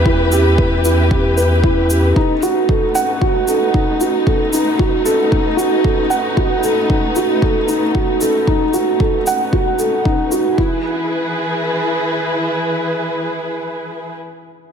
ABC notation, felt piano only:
X:1
M:4/4
L:1/8
Q:1/4=114
K:Bphr
V:1 name="Felt piano"
E G B E G B E G | ^D F A f F A D F | A ^D F A D F A f | F A ^D F A D F A |
^D F A f F A D F | E z6 z | z8 |]